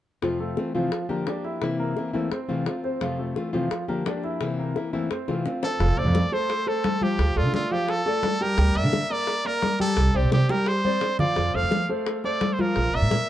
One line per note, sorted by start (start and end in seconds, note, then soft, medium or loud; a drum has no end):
0.22 0.57 F2 medium
0.22 0.57 C3 medium
0.22 0.37 F3 medium
0.22 0.57 A3 medium
0.22 0.57 C4 medium
0.22 0.37 F4 medium
0.22 0.57 F4 medium
0.22 high bongo medium
0.40 0.69 A3 medium
0.40 0.69 A4 medium
0.57 0.74 E3 soft
0.57 0.74 A3 soft
0.57 0.74 C4 medium
0.57 0.73 F4 medium
0.57 high bongo medium
0.75 0.92 C3 medium
0.75 0.92 E3 medium
0.75 1.04 F3 medium
0.75 0.92 A3 medium
0.75 0.92 C4 medium
0.75 0.92 F4 medium
0.75 1.04 F4 medium
0.75 high bongo soft
0.92 muted nylon-string guitar stroke medium
0.92 high bongo medium
1.09 1.27 D3 soft
1.09 1.25 F3 medium
1.09 1.24 A#3 medium
1.09 1.26 A#3 medium
1.09 1.26 D4 medium
1.09 1.26 G4 medium
1.09 1.24 A#4 medium
1.09 high bongo soft
1.27 1.61 F3 soft
1.27 1.61 A#3 soft
1.27 1.42 D4 medium
1.27 1.62 D4 soft
1.27 1.62 G4 soft
1.27 1.42 D5 medium
1.27 high bongo medium
1.27 low bongo medium
1.44 1.73 E4 medium
1.44 1.73 E5 medium
1.44 high bongo soft
1.62 1.96 C3 medium
1.62 1.95 E3 medium
1.62 1.96 A#3 medium
1.62 1.96 C4 medium
1.62 1.97 E4 medium
1.62 high bongo medium
1.79 2.08 A#3 medium
1.79 2.08 A#4 medium
1.96 2.14 E3 soft
1.96 2.14 A#3 soft
1.96 2.13 C4 medium
1.96 2.12 E4 soft
1.96 high bongo soft
2.13 2.31 E3 medium
2.13 2.29 A3 medium
2.13 2.31 A#3 medium
2.13 2.31 C4 medium
2.13 2.31 E4 medium
2.13 2.29 A4 medium
2.13 high bongo soft
2.31 2.46 C4 medium
2.31 2.46 C5 medium
2.31 muted nylon-string guitar stroke medium
2.31 high bongo medium
2.49 2.67 C3 soft
2.49 2.66 E3 medium
2.49 2.65 A3 medium
2.49 2.66 C4 medium
2.49 2.66 F4 medium
2.49 2.78 F4 medium
2.49 2.78 F5 medium
2.49 high bongo soft
2.66 3.01 A3 soft
2.66 3.01 C4 soft
2.66 3.01 F4 soft
2.66 high bongo medium
2.66 low bongo medium
2.84 2.98 C4 medium
2.84 2.99 C5 medium
2.84 high bongo soft
3.01 3.35 F2 medium
3.01 3.35 C3 medium
3.01 3.16 F3 medium
3.01 3.35 A3 medium
3.01 3.35 C4 medium
3.01 3.16 F4 medium
3.01 3.36 F4 medium
3.01 high bongo medium
3.19 3.48 A3 medium
3.19 3.48 A4 medium
3.35 3.53 E3 soft
3.35 3.53 A3 soft
3.35 3.52 C4 soft
3.35 3.52 F4 medium
3.35 high bongo medium
3.53 3.71 C3 medium
3.53 3.71 E3 medium
3.53 3.82 F3 medium
3.53 3.71 A3 medium
3.53 3.70 C4 medium
3.53 3.70 F4 medium
3.53 3.83 F4 medium
3.53 high bongo soft
3.71 muted nylon-string guitar stroke soft
3.71 high bongo medium
3.88 4.06 D3 soft
3.88 4.04 F3 soft
3.88 4.03 A#3 medium
3.88 4.05 A#3 medium
3.88 4.05 D4 medium
3.88 4.05 G4 medium
3.88 4.03 A#4 medium
3.88 high bongo soft
4.06 4.40 F3 soft
4.06 4.40 A#3 soft
4.06 4.21 D4 medium
4.06 4.41 D4 soft
4.06 4.41 G4 soft
4.06 4.21 D5 medium
4.06 high bongo medium
4.06 low bongo medium
4.24 4.52 E4 medium
4.24 4.52 E5 medium
4.24 high bongo soft
4.41 4.75 C3 medium
4.41 4.74 E3 medium
4.41 4.75 A#3 medium
4.41 4.76 C4 medium
4.41 4.76 E4 medium
4.41 high bongo medium
4.59 4.87 A#3 medium
4.59 4.87 A#4 medium
4.75 4.92 E3 soft
4.75 4.93 A#3 medium
4.75 4.93 C4 soft
4.75 4.92 E4 soft
4.75 high bongo medium
4.93 5.10 E3 medium
4.93 5.08 A3 medium
4.93 5.11 A#3 medium
4.93 5.10 C4 medium
4.93 5.10 E4 medium
4.93 5.08 A4 medium
4.93 high bongo soft
5.11 5.25 C4 medium
5.11 5.25 C5 medium
5.11 muted nylon-string guitar stroke medium
5.11 high bongo medium
5.28 5.45 C3 soft
5.28 5.45 E3 medium
5.28 5.45 A3 medium
5.28 5.45 C4 medium
5.28 5.45 F4 medium
5.28 5.57 F4 medium
5.28 5.57 F5 medium
5.28 high bongo medium
5.46 5.80 A3 soft
5.46 5.80 C4 soft
5.46 5.80 F4 soft
5.46 low bongo medium
5.63 5.77 C4 medium
5.63 6.00 A4 medium
5.63 5.77 C5 medium
5.63 low bongo medium
5.79 5.96 F1 medium
5.79 5.94 F3 medium
5.79 5.94 F4 medium
5.79 5.95 F5 medium
5.79 high bongo medium
5.79 high conga soft
5.97 6.06 F1 medium
5.97 6.26 A3 medium
5.97 6.26 A4 medium
5.97 6.26 C5 medium
5.97 6.35 D5 medium
5.97 high conga soft
6.06 6.23 F2 medium
6.15 high bongo medium
6.15 high conga medium
6.32 6.61 A3 medium
6.32 6.61 A4 medium
6.32 6.61 C5 medium
6.32 6.70 C5 medium
6.32 high bongo soft
6.32 high conga soft
6.50 high bongo medium
6.50 high conga soft
6.67 6.95 A3 medium
6.67 6.95 A4 medium
6.67 7.05 A4 medium
6.67 6.96 C5 medium
6.67 high bongo soft
6.67 high conga soft
6.84 high bongo medium
6.84 low bongo medium
6.84 high conga medium
7.01 7.30 F3 medium
7.01 7.30 F4 medium
7.01 7.39 G4 medium
7.01 7.30 F5 medium
7.01 high bongo soft
7.01 high conga medium
7.18 7.35 D2 medium
7.18 high bongo medium
7.36 7.45 D2 medium
7.36 7.50 A3 medium
7.36 7.54 F4 medium
7.36 7.51 A4 medium
7.36 7.51 D5 medium
7.36 high conga soft
7.45 7.61 D3 medium
7.54 7.68 A3 medium
7.54 7.73 F4 medium
7.54 7.68 A4 medium
7.54 7.68 D5 medium
7.54 high bongo medium
7.54 high conga medium
7.71 8.00 F3 medium
7.71 8.00 F4 medium
7.71 7.92 G4 medium
7.71 8.00 F5 medium
7.71 high bongo soft
7.88 8.44 A4 medium
7.88 high bongo medium
7.88 high conga soft
8.06 8.34 A3 medium
8.06 8.35 A4 medium
8.06 8.35 D5 medium
8.06 high bongo soft
8.06 high conga soft
8.23 high bongo medium
8.23 low bongo medium
8.23 high conga medium
8.41 8.55 G3 medium
8.41 8.55 G4 medium
8.41 8.79 A#4 medium
8.41 8.55 G5 medium
8.41 high bongo soft
8.58 8.74 D2 medium
8.58 8.72 G3 medium
8.58 8.72 G4 medium
8.58 8.73 G5 medium
8.58 high bongo medium
8.75 8.84 D2 medium
8.75 9.04 A#3 medium
8.75 9.04 A#4 medium
8.75 9.04 D5 medium
8.75 9.13 E5 loud
8.75 high conga soft
8.84 9.01 D3 medium
8.93 high bongo medium
8.93 high conga medium
9.10 9.39 A#3 medium
9.10 9.39 A#4 medium
9.10 9.39 D5 medium
9.10 9.48 D5 loud
9.10 high bongo soft
9.10 high conga soft
9.27 high bongo medium
9.27 high conga soft
9.45 9.73 A#3 medium
9.45 9.74 A#4 medium
9.45 9.81 A#4 medium
9.45 9.74 D5 medium
9.45 high bongo soft
9.45 high conga soft
9.62 high bongo medium
9.62 low bongo medium
9.62 high conga medium
9.79 10.08 G3 medium
9.79 10.09 G4 medium
9.79 10.18 A4 loud
9.79 10.09 G5 medium
9.79 high bongo soft
9.79 high conga medium
9.97 10.14 C2 medium
9.97 high bongo medium
9.97 high conga soft
10.14 10.24 C2 medium
10.14 10.29 C4 medium
10.14 10.33 G4 medium
10.14 10.29 C5 medium
10.14 10.29 D5 medium
10.14 high conga soft
10.23 10.40 C3 medium
10.32 10.46 C4 medium
10.32 10.52 G4 medium
10.32 10.46 C5 medium
10.32 10.47 D5 medium
10.32 high bongo medium
10.32 high conga medium
10.49 10.78 G3 medium
10.49 10.78 G4 medium
10.49 10.70 A#4 medium
10.49 10.78 G5 medium
10.49 high bongo soft
10.49 high conga medium
10.66 11.19 C5 loud
10.66 high bongo medium
10.84 11.13 C4 medium
10.84 11.13 C5 medium
10.84 11.13 D5 medium
10.84 high bongo soft
10.84 high conga medium
11.01 high bongo medium
11.01 low bongo medium
11.19 11.34 F3 medium
11.19 11.34 F4 medium
11.19 11.57 D5 medium
11.19 11.34 F5 medium
11.19 high bongo soft
11.19 low conga loud
11.36 11.53 F2 medium
11.36 11.51 F3 medium
11.36 11.51 F4 medium
11.36 11.51 F5 medium
11.36 high bongo medium
11.36 high conga soft
11.54 11.64 F2 medium
11.54 11.83 A3 medium
11.54 11.83 A4 medium
11.54 11.83 C5 medium
11.54 11.90 F5 medium
11.54 high conga soft
11.63 11.79 F3 medium
11.71 high bongo medium
11.71 high conga medium
11.89 12.18 A3 medium
11.89 12.18 A4 medium
11.89 12.18 C5 medium
11.89 high bongo soft
11.89 high conga soft
12.06 high bongo medium
12.06 high conga soft
12.24 12.53 A3 medium
12.24 12.53 A4 medium
12.24 12.53 C5 medium
12.24 12.55 D5 medium
12.24 high bongo soft
12.24 high conga soft
12.41 high bongo medium
12.41 low bongo medium
12.41 high conga medium
12.53 12.62 C5 medium
12.58 12.88 F3 medium
12.58 12.88 F4 medium
12.58 12.97 A#4 loud
12.58 12.88 F5 medium
12.58 high bongo soft
12.58 high conga medium
12.76 12.93 A#1 medium
12.76 high bongo medium
12.76 high conga soft
12.93 13.03 A#1 medium
12.93 13.08 A#3 medium
12.93 13.08 A#4 medium
12.93 13.09 D5 medium
12.93 13.29 E5 loud
12.93 high conga soft
13.02 13.18 A#2 medium
13.11 13.25 A#3 medium
13.11 13.26 A#4 medium
13.11 13.26 D5 medium
13.11 high bongo medium
13.11 high conga medium